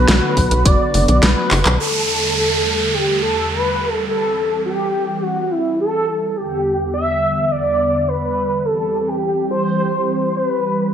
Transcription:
0.00 1.76 D3 medium
0.00 1.76 F#3 medium
0.00 1.76 B3 medium
0.00 1.76 F#4 medium
0.00 0.67 B4 loud
0.08 0.20 B1 loud
0.08 snare loud
0.08 closed hi-hat medium
0.37 0.49 B1 medium
0.37 kick medium
0.37 open hi-hat medium
0.51 0.63 B1 medium
0.51 closed hi-hat medium
0.65 0.77 F#1 loud
0.65 1.22 D5 loud
0.65 kick loud
0.65 closed hi-hat loud
0.94 1.06 F#1 medium
0.94 open hi-hat medium
1.08 1.20 B1 medium
1.08 closed hi-hat medium
1.23 1.35 B1 loud
1.23 1.76 B4 loud
1.23 snare loud
1.23 closed hi-hat loud
1.51 1.63 F#1 loud
1.51 clap medium
1.51 open hi-hat medium
1.65 1.77 B1 medium
1.65 clap loud
1.65 closed hi-hat medium
1.80 4.06 E2 medium
1.80 4.06 D3 medium
1.80 6.33 G3 medium
1.80 4.06 A3 medium
1.80 6.33 G4 medium
1.80 2.95 A4 loud
1.80 downlifter medium
2.94 3.22 G4 medium
3.22 3.49 A4 medium
3.51 3.93 B4 loud
3.93 4.04 A4 loud
4.08 6.34 E3 medium
4.08 6.35 C4 medium
4.08 4.61 A4 loud
4.65 5.24 G4 loud
5.22 5.52 F#4 loud
5.51 5.79 E4 medium
5.79 6.30 A4 loud
6.30 6.38 A4 medium
6.37 8.63 E2 medium
6.37 8.63 D3 medium
6.37 10.94 G3 medium
6.37 8.63 B3 medium
6.37 6.93 G4 loud
6.37 8.63 F#5 medium
6.94 7.52 E5 loud
7.51 8.09 D5 loud
8.08 8.67 B4 loud
8.65 10.92 E3 medium
8.65 10.92 C4 medium
8.65 10.92 G4 medium
8.65 9.10 A4 loud
9.08 9.50 G4 loud
9.51 10.36 C5 loud
10.36 10.47 C5 loud
10.47 10.93 B4 loud

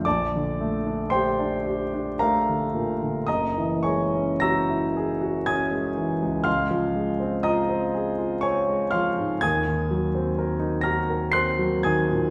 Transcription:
0.05 3.24 A#1 soft
0.05 1.07 D5 medium
0.05 1.08 A5 medium
0.05 1.11 D6 medium
0.36 0.76 D3 soft
0.61 1.02 A3 soft
0.87 1.28 D4 soft
1.10 1.54 G4 soft
1.10 2.14 C5 medium
1.10 2.14 G5 medium
1.10 2.18 C6 medium
1.39 1.81 D4 soft
1.66 2.08 G4 soft
1.94 2.36 D4 soft
2.19 2.64 A3 soft
2.19 3.24 A#4 medium
2.19 3.24 F5 medium
2.19 3.27 A#5 medium
2.49 2.91 D3 soft
2.74 3.17 A#2 soft
3.02 3.28 D3 soft
3.27 6.44 F#1 soft
3.27 3.81 D#5 medium
3.27 3.81 A#5 medium
3.27 3.84 D#6 medium
3.58 4.04 E3 soft
3.83 4.32 G#3 soft
3.83 4.39 C#5 soft
3.83 4.39 G#5 soft
3.83 4.42 C#6 medium
4.15 4.59 C#4 soft
4.40 4.85 F#4 soft
4.40 5.41 A#5 medium
4.40 5.41 E6 medium
4.40 5.44 A#6 medium
4.70 5.11 E4 soft
4.97 5.36 G#4 soft
5.21 5.61 F#4 soft
5.46 5.87 C#4 soft
5.46 6.43 G#5 medium
5.46 6.43 D#6 medium
5.46 6.46 G#6 medium
5.71 6.11 G#3 soft
5.98 6.37 E3 soft
6.22 6.45 C#2 soft
6.44 9.39 C#2 medium
6.44 7.40 F5 medium
6.44 7.40 C6 medium
6.44 7.43 F6 medium
6.71 7.10 F3 soft
6.96 7.35 G#3 soft
7.20 7.60 C4 soft
7.43 7.84 F4 soft
7.43 8.39 D#5 medium
7.43 8.39 A#5 medium
7.43 8.43 D#6 medium
7.69 8.09 C4 soft
7.95 8.34 G#4 soft
8.18 8.58 F4 soft
8.41 8.83 C4 soft
8.41 8.89 C#5 medium
8.41 8.90 G#5 medium
8.41 8.92 C#6 medium
8.69 9.09 G#3 soft
8.91 9.33 F3 soft
8.91 9.39 F5 medium
8.91 9.39 C6 medium
8.91 9.42 F6 medium
9.18 9.43 G#2 soft
9.41 12.30 D#2 medium
9.41 10.83 G#5 medium
9.41 10.83 D#6 medium
9.41 10.86 G#6 medium
9.67 10.06 D#3 soft
9.91 10.30 F#3 soft
10.15 10.54 C4 soft
10.39 10.77 A#4 soft
10.59 11.00 D#4 soft
10.81 11.24 F#4 soft
10.81 11.30 A#5 medium
10.81 11.30 F6 medium
10.81 11.33 A#6 medium
11.10 11.50 A#4 soft
11.32 11.75 C4 soft
11.32 11.80 C6 medium
11.32 11.80 F#6 medium
11.32 11.83 C7 medium
11.59 12.00 F#3 soft
11.83 12.26 D#3 soft
11.83 12.30 G#5 medium
11.83 12.30 D#6 medium
11.83 12.30 G#6 medium
12.11 12.30 A#2 soft

